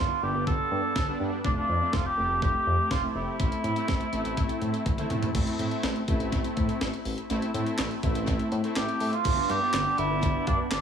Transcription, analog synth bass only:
0.23 G1
0.35 G1
0.47 G1
0.71 G2
0.96 G1
1.20 G2
1.44 F1
1.69 F2
1.93 F1
2.18 F1
2.30 F1
2.42 F1
2.67 F2
2.91 F1
3.15 F1
3.40 A1
3.64 A2
3.89 A1
4.13 A1
4.25 A1
4.37 A1
4.62 A2
4.86 A1
5.10 A2
5.35 A1
5.59 A2
5.83 A1
6.08 A1
6.20 A1
6.32 A1
6.57 A2
6.81 A1
7.05 A1
7.30 A1
7.54 A2
7.79 A1
8.03 A1
8.15 A1
8.28 A1
8.52 A2
8.76 A1
9.01 A2
9.25 G1
9.49 G2
9.74 G1
9.98 G1
10.10 G1
10.23 G1
10.47 G2
10.71 G1

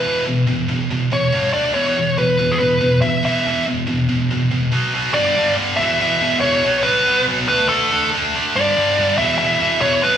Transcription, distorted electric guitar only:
0.05 E2 B2 E3
0.26 E2 B2
0.47 E2 B2
0.69 E2 B2
0.91 E2 B2
1.12 E2 B2
1.33 G2 D3 G3
1.54 D3 A3 D4
1.75 E2 B2 E3
1.96 E2 B2
2.18 E2 B2
2.39 E2 B2
2.60 E2 B2
2.81 E2 B2
3.02 E2 B2
3.23 E2 B2 E3
3.45 E2 B2 E3
3.67 E2 B2
3.87 E2 B2
4.09 E2 B2
4.31 E2 B2
4.51 E2 B2
4.72 B2 F#3 B3
4.94 B2 F#3 B3
5.15 G2 D3 G3
5.37 G2 D3 G3
5.58 G2 D3 G3
5.79 E2 B2 E3
6.01 E2 B2 E3
6.21 E2 B2 E3
6.42 E2 B2 E3
6.64 B2 F#3 B3
6.85 B2 F#3 B3
7.06 B2 F#3 B3
7.27 B2 F#3 B3
7.49 D3 A3 D4
7.70 D3 A3 D4
7.91 D3 A3 D4
8.14 D3 A3 D4
8.35 D3 A3 D4
8.56 G2 D3 G3
8.77 G2 D3 G3
8.98 G2 D3 G3
9.18 E2 B2 E3
9.40 E2 B2 E3
9.60 E2 B2 E3
9.81 E2 B2 E3
10.04 B2 F#3 B3

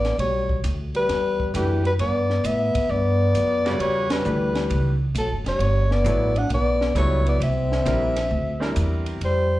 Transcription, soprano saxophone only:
Already playing: D5
0.20 C#5
0.97 B4
1.56 G4
1.87 B4
2.01 D5
2.46 E5
2.91 D5
3.81 C#5
4.13 B4
5.18 A4
5.48 C#5
5.92 D5
6.38 F#5
6.54 D5
6.98 C#5
7.29 D5
7.43 E5
9.25 C5

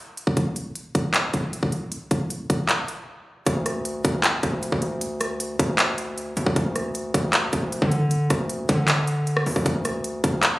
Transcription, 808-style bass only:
3.47 D2
4.05 D2
4.43 D2
4.72 D2
5.59 D2
6.37 D2
6.47 D2
6.56 D2
7.14 D2
7.53 D2
7.82 D3
8.30 D2
8.69 D3
9.46 D2
9.56 D2
9.66 D2
10.24 D2

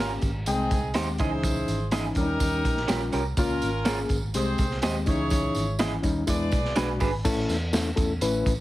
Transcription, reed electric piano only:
0.00 A#3 C#4 G4
0.47 G#3 C4 G5
0.95 G#3 C4 G4
1.21 D#3 C#4 D#4
1.26 E3
1.92 E3 C#4 D#4
2.17 G3 C#4 D4
2.23 D#4
2.91 G3 C#4 F4
3.38 A#3 C#4 F4
3.86 A#3 C#4 G#4
4.34 G#3 C4 G4
4.83 G#3 C4 G4
5.06 E3 C#4 D#4
5.79 E3 C#4 E4
6.03 G3 C#4 D#4
6.27 G#3 D4 E4
6.76 G#3 D4 F#4
7.25 A3 C#4 E4 A4
7.73 A3 C#4 E4 A4
7.96 A3 C#4 E4 A4
8.22 A3 C#4 E4 B4

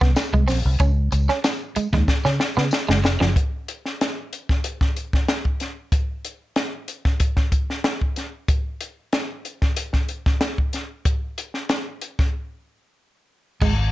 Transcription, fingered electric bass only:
0.01 C2
0.33 C2
0.48 A#1
0.65 C2
0.80 C#2
1.12 C#2
1.76 muted fingered electric bass stroke
1.93 D#2
2.25 C#3
2.57 C#3
2.89 F#1
3.04 F1
3.21 F#1
13.62 G#1

